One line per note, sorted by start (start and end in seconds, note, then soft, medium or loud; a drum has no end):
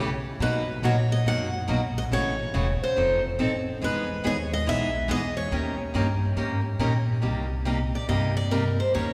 0.00 0.39 C#3 medium
0.40 0.81 B2 medium
0.40 0.62 B2 medium
0.40 0.62 F#3 medium
0.40 0.62 A#3 medium
0.40 0.63 D#4 medium
0.40 0.63 F#4 medium
0.40 0.85 B4 medium
0.82 1.24 A#2 medium
0.82 0.94 B2 medium
0.82 0.95 F#3 medium
0.82 0.95 A#3 medium
0.82 0.95 D#4 medium
0.82 0.95 F#4 medium
0.82 1.12 C#5 medium
1.12 1.27 D#5 medium
1.25 1.66 F#2 medium
1.25 1.48 B2 medium
1.25 1.48 F#3 medium
1.25 1.48 A#3 medium
1.25 1.48 D#4 medium
1.25 1.48 F#4 medium
1.25 1.66 F#5 loud
1.68 2.09 B1 medium
1.68 1.79 B2 medium
1.68 1.80 F#3 medium
1.68 1.80 A#3 medium
1.68 1.80 D#4 medium
1.68 1.80 F#4 loud
1.98 2.03 D#5 loud
2.11 2.52 A1 medium
2.11 2.33 C#3 medium
2.11 2.33 E3 medium
2.11 2.34 A3 medium
2.11 2.33 C#4 medium
2.11 2.34 F#4 medium
2.11 2.83 C#5 loud
2.54 2.80 E1 loud
2.54 2.65 C#3 medium
2.54 2.66 E3 medium
2.54 2.66 A3 medium
2.54 2.66 C#4 medium
2.54 2.66 F#4 medium
2.81 3.22 C5 medium
2.81 muted upright bass stroke soft
2.96 3.38 F1 medium
2.96 3.18 F3 medium
2.96 3.19 C4 medium
2.96 3.19 D#4 medium
2.96 3.19 A4 medium
3.39 3.81 A1 medium
3.39 3.50 F3 medium
3.39 3.51 C4 medium
3.39 3.51 D#4 medium
3.39 3.51 A4 medium
3.81 4.23 E2 medium
3.81 4.04 E3 medium
3.81 4.04 G#3 medium
3.81 4.04 B3 medium
3.81 4.04 D#4 medium
3.81 4.04 G#4 medium
3.81 4.27 B4 loud
4.24 4.66 D#2 loud
4.24 4.36 E3 medium
4.24 4.36 G#3 medium
4.24 4.36 B3 medium
4.24 4.36 D#4 medium
4.24 4.36 G#4 loud
4.24 4.53 C#5 loud
4.53 4.68 D#5 loud
4.66 5.09 B1 medium
4.66 4.89 E3 medium
4.66 4.89 G#3 medium
4.66 4.89 B3 medium
4.66 4.89 D#4 medium
4.66 4.89 G#4 medium
4.66 5.08 E5 loud
5.08 5.51 E2 medium
5.08 5.21 E3 medium
5.08 5.21 G#3 medium
5.08 5.21 B3 medium
5.08 5.21 D#4 medium
5.08 5.21 G#4 loud
5.08 5.36 D#5 loud
5.37 7.04 C#5 medium
5.51 5.93 D#2 medium
5.51 5.74 D#3 medium
5.51 5.74 A#3 medium
5.51 5.74 C#4 medium
5.51 5.75 G4 medium
5.51 5.75 A#4 medium
5.94 6.36 G2 loud
5.94 6.06 D#3 medium
5.94 6.07 A#3 medium
5.94 6.07 C#4 loud
5.94 6.07 G4 medium
5.94 6.07 A#4 loud
6.36 6.78 G#2 medium
6.36 6.59 D#3 medium
6.36 6.59 A#3 medium
6.36 6.60 C#4 medium
6.36 6.60 G4 medium
6.36 6.60 A#4 medium
6.79 7.21 A#2 medium
6.79 6.92 D#3 medium
6.79 6.92 A#3 medium
6.79 6.92 C#4 medium
6.79 6.92 G4 medium
6.79 6.92 A#4 medium
7.22 7.91 C2 medium
7.22 7.45 C3 medium
7.22 7.45 G3 medium
7.22 7.45 A#3 medium
7.22 7.45 D#4 medium
7.22 7.45 G4 medium
7.65 7.78 C3 medium
7.65 7.78 G3 medium
7.65 7.78 A#3 medium
7.65 7.78 D#4 medium
7.65 7.78 G4 medium
7.95 8.08 D5 medium
8.08 8.77 G2 medium
8.08 8.31 C3 medium
8.08 8.31 G3 medium
8.08 8.31 A#3 medium
8.08 8.32 D#4 medium
8.08 8.32 G4 medium
8.08 8.36 D#5 medium
8.37 8.52 D5 medium
8.51 8.63 C3 medium
8.51 8.64 G3 medium
8.51 8.64 A#3 medium
8.51 8.64 D#4 loud
8.51 8.64 G4 loud
8.51 8.79 A#4 medium
8.80 8.94 C5 medium
8.94 9.13 D#2 medium
8.94 9.13 D#3 medium
8.94 9.13 A#3 medium
8.94 9.13 C#4 medium
8.94 9.13 G4 medium
8.94 9.13 A#4 medium
8.94 9.13 C#5 medium